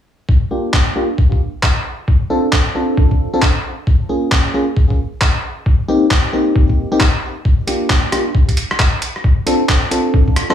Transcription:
0.29 kick loud
0.51 0.94 A#3 medium
0.51 0.94 D4 medium
0.51 0.94 F4 medium
0.51 0.94 G4 medium
0.73 kick loud
0.73 clap loud
0.96 1.08 A#3 medium
0.96 1.08 D4 medium
0.96 1.08 F4 medium
0.96 1.08 G4 medium
1.18 kick loud
1.32 kick medium
1.63 kick loud
1.63 clap loud
2.08 kick loud
2.30 2.47 C4 medium
2.30 2.47 D4 medium
2.30 2.47 F4 medium
2.30 2.47 A4 loud
2.53 kick loud
2.53 clap loud
2.75 3.30 C4 medium
2.75 3.30 D4 medium
2.75 3.30 F4 medium
2.75 3.30 A4 medium
2.97 kick loud
3.11 kick medium
3.33 3.41 C4 medium
3.33 3.41 D4 medium
3.33 3.41 F4 medium
3.33 3.41 A4 loud
3.42 kick loud
3.42 clap loud
3.87 kick loud
4.09 4.52 A#3 medium
4.09 4.52 C#4 medium
4.09 4.52 F4 medium
4.09 4.52 G#4 medium
4.32 kick loud
4.32 clap loud
4.54 4.66 A#3 medium
4.54 4.66 C#4 medium
4.54 4.66 F4 medium
4.54 4.66 G#4 medium
4.77 kick loud
4.90 kick medium
5.21 kick loud
5.21 clap loud
5.66 kick loud
5.88 6.05 A#3 medium
5.88 6.05 C4 medium
5.88 6.05 D#4 medium
5.88 6.05 G4 loud
6.11 kick loud
6.11 clap loud
6.33 6.89 A#3 medium
6.33 6.88 C4 medium
6.33 6.88 D#4 medium
6.33 6.89 G4 medium
6.56 kick loud
6.70 kick medium
6.92 6.99 A#3 medium
6.92 6.99 C4 medium
6.92 6.99 D#4 medium
6.92 6.99 G4 loud
7.00 kick loud
7.00 clap loud
7.45 kick loud
7.67 8.10 A#3 medium
7.67 8.10 D4 medium
7.67 8.10 F4 medium
7.67 8.10 G4 medium
7.67 closed hi-hat medium
7.90 kick loud
7.90 clap loud
8.12 8.24 A#3 medium
8.12 8.24 D4 medium
8.12 8.24 F4 medium
8.12 8.24 G4 medium
8.12 cross-stick medium
8.12 closed hi-hat loud
8.35 kick loud
8.49 kick medium
8.49 closed hi-hat medium
8.57 closed hi-hat loud
8.71 cross-stick medium
8.79 kick loud
8.79 clap loud
9.02 closed hi-hat loud
9.16 cross-stick soft
9.24 kick loud
9.46 9.64 C4 medium
9.46 9.63 D4 medium
9.46 9.64 F4 medium
9.46 9.64 A4 loud
9.46 closed hi-hat loud
9.69 kick loud
9.69 clap loud
9.91 10.47 C4 medium
9.91 10.47 D4 medium
9.91 10.47 F4 medium
9.91 10.47 A4 medium
9.91 closed hi-hat loud
10.14 kick loud
10.28 kick medium
10.36 cross-stick medium
10.36 closed hi-hat loud
10.50 10.54 C4 medium
10.50 10.54 D4 medium
10.50 10.54 F4 medium
10.50 10.54 A4 loud
10.50 cross-stick medium

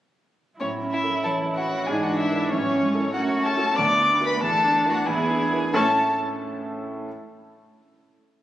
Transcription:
0.59 1.84 A2 soft
0.59 1.25 F#3 soft
0.59 0.68 C#4 soft
0.59 1.84 E4 soft
0.59 0.68 C#5 soft
0.82 1.16 C#4 soft
0.91 1.01 E4 soft
0.91 1.23 E5 medium
1.04 1.37 A4 soft
1.24 1.87 E3 soft
1.24 1.32 A4 soft
1.24 1.59 C#5 soft
1.24 1.32 A5 medium
1.46 1.79 E5 soft
1.56 1.89 F#4 soft
1.56 1.88 F#5 medium
1.67 1.88 C#5 soft
1.87 2.50 G#2 soft
1.87 2.52 E3 soft
1.87 2.52 D4 soft
1.87 2.04 G#4 soft
1.87 2.04 G#5 medium
2.03 2.22 F#4 soft
2.03 2.18 F#5 medium
2.10 2.43 D4 soft
2.19 2.51 E4 medium
2.19 2.50 E5 medium
2.31 2.50 E4 soft
2.31 2.50 B4 soft
2.50 3.13 A2 medium
2.50 2.82 F#3 soft
2.50 3.14 C#4 soft
2.50 3.13 C#4 medium
2.50 3.13 C#5 medium
2.73 3.07 C#4 soft
2.83 2.91 G#3 medium
2.94 3.13 E4 soft
2.94 3.13 A4 soft
3.14 3.77 F#2 medium
3.14 3.77 A3 soft
3.14 3.77 C#4 soft
3.14 3.48 F#4 medium
3.14 3.22 F#5 medium
3.37 3.70 C#4 soft
3.44 3.77 A4 medium
3.44 3.78 A5 medium
3.57 3.76 F#4 soft
3.57 3.76 A4 soft
3.77 4.40 D2 medium
3.77 5.09 A3 medium
3.77 4.43 B3 medium
3.77 4.25 D5 medium
3.77 4.25 D6 loud
4.00 4.34 D4 soft
4.21 4.40 F#4 soft
4.21 4.40 B4 medium
4.26 4.33 B4 medium
4.26 4.42 B5 medium
4.41 5.05 E2 medium
4.41 5.09 D4 medium
4.41 4.88 A4 medium
4.41 4.90 A5 medium
4.64 4.98 D4 medium
4.86 5.05 E4 soft
4.86 4.96 F#4 medium
4.86 5.05 B4 medium
4.93 5.08 F#5 medium
5.06 5.72 E2 medium
5.06 5.53 B3 medium
5.06 5.53 E4 medium
5.06 5.72 G#4 medium
5.06 5.74 G#5 medium
5.29 5.65 D4 medium
5.53 5.72 E4 soft
5.53 5.72 B4 soft
5.73 6.10 A2 medium
5.73 6.10 A3 medium
5.73 6.11 A3 medium
5.73 6.10 C#4 medium
5.73 6.11 C#4 medium
5.73 6.11 E4 medium
5.73 6.10 A4 medium
5.73 6.11 E5 medium
5.73 6.11 A5 medium

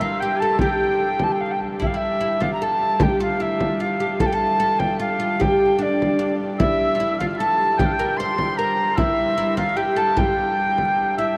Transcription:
0.00 1.80 G2 medium
0.00 0.21 F4 medium
0.00 0.17 E5 medium
0.00 0.21 F5 medium
0.00 frame drum medium
0.20 0.40 G4 medium
0.20 0.40 G5 medium
0.20 0.41 G5 medium
0.39 0.60 A4 medium
0.39 0.59 A5 medium
0.59 1.21 G4 medium
0.59 1.24 G5 medium
0.59 1.20 G5 medium
0.59 frame drum medium
1.00 frame drum soft
1.19 1.33 A5 medium
1.19 frame drum medium
1.31 1.42 G5 medium
1.40 1.52 F5 medium
1.40 frame drum soft
1.51 1.60 G5 medium
1.61 frame drum soft
1.80 6.58 G2 medium
1.80 1.93 E4 medium
1.80 1.88 E5 medium
1.80 frame drum medium
1.86 1.97 F5 medium
1.94 2.19 E4 medium
1.94 2.43 E5 medium
2.02 frame drum soft
2.21 2.40 E4 medium
2.21 frame drum soft
2.41 2.61 F4 medium
2.41 2.52 F5 medium
2.41 frame drum medium
2.53 2.63 A#5 medium
2.62 2.98 A4 medium
2.62 3.04 A5 medium
3.00 3.20 G4 medium
3.00 3.21 G5 medium
3.00 frame drum loud
3.20 3.41 F4 medium
3.20 3.42 F5 medium
3.20 frame drum soft
3.40 3.81 E4 medium
3.40 3.82 E5 medium
3.40 frame drum soft
3.60 frame drum medium
3.80 4.00 F4 medium
3.80 4.22 F5 medium
4.00 4.20 G4 medium
4.20 4.31 A4 medium
4.20 4.27 A5 medium
4.20 frame drum medium
4.25 4.35 G5 medium
4.33 4.58 A4 medium
4.33 4.80 A5 loud
4.41 frame drum soft
4.60 4.99 A4 medium
4.60 frame drum soft
4.78 4.99 G5 medium
4.78 frame drum medium
4.99 5.18 F4 medium
4.99 5.42 F5 medium
5.19 5.39 F4 medium
5.40 5.81 G4 medium
5.40 5.83 G5 loud
5.40 frame drum medium
5.79 6.18 D4 medium
5.79 6.34 D5 medium
6.02 frame drum medium
6.19 6.38 D4 medium
6.58 11.36 G2 medium
6.58 6.94 E4 medium
6.58 7.20 E5 medium
6.58 7.15 E5 medium
6.58 frame drum medium
6.81 frame drum soft
6.95 6.99 F4 medium
7.00 7.20 E4 medium
7.00 frame drum soft
7.19 7.40 F4 medium
7.19 7.37 F5 medium
7.19 7.25 F5 medium
7.19 frame drum medium
7.38 7.79 A4 medium
7.38 7.56 A5 medium
7.38 7.80 A5 medium
7.56 7.76 A5 medium
7.78 7.99 G4 medium
7.78 7.88 G5 medium
7.78 8.18 G5 medium
7.78 frame drum medium
7.86 7.94 F5 medium
7.93 8.20 G5 medium
7.99 8.20 A#4 medium
7.99 frame drum soft
8.16 8.58 C5 medium
8.16 8.56 C6 loud
8.16 8.36 C6 medium
8.16 frame drum soft
8.37 8.59 C6 medium
8.37 frame drum medium
8.57 8.97 A#4 medium
8.57 8.99 A#5 loud
8.57 8.98 A#5 medium
8.96 9.36 E4 medium
8.96 9.37 E5 medium
8.96 9.57 E5 loud
8.96 frame drum medium
9.17 frame drum soft
9.38 9.57 E4 medium
9.38 9.56 E5 medium
9.38 frame drum soft
9.57 9.76 F4 medium
9.57 9.77 F5 medium
9.57 9.79 F5 medium
9.57 frame drum medium
9.76 9.96 G4 medium
9.76 9.99 G5 medium
9.76 10.17 G5 medium
9.96 10.16 A4 medium
9.96 10.19 A5 medium
10.17 11.12 G4 medium
10.17 11.17 G5 loud
10.17 11.13 G5 medium
10.17 frame drum medium
10.38 frame drum soft
10.78 frame drum medium
10.98 frame drum soft
11.17 11.37 E4 medium
11.17 11.35 E5 medium
11.17 11.26 E5 medium
11.17 frame drum soft

